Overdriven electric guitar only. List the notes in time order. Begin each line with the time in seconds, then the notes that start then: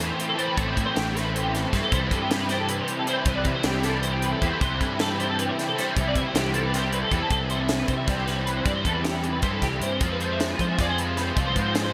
Already playing: E3 A3 C4 E4
0.36 E3 A3 C4 E4
0.57 A2 E3 A3 C4 E4
0.95 A2 E3 A3 C4 E4
1.15 A3 C4 E4
1.72 E3 A3 C4 E4
1.90 C3 E3 G3 C4 E4
2.29 C3 E3 G3 C4 E4
2.48 G3 C4 E4
3.06 E3 G3 C4 E4
3.25 C3 E3 G3 C4 E4
3.63 C3 E3 G3 C4 E4
3.83 G3 C4 E4
4.41 E3 G3 C4 E4
4.59 C3 E3 G3 C4 E4
4.97 C3 E3 G3 C4 E4
5.17 G3 C4 E4
5.75 E3 G3 C4 E4
5.95 C3 E3 G3 C4 E4
6.34 C3 E3 G3 C4 E4
6.53 G3 C4 E4
7.09 E3 G3 C4 E4
7.30 C3 E3 G3 C4 E4
8.06 C3 E3 G3 C4 E4
8.65 C3 E3 G3 C4 E4
9.43 C3 E3 G3 C4 E4
10.00 F3 G#3 C4 F4
10.77 F3 G#3 C4 F4
11.35 F3 G#3 C4 F4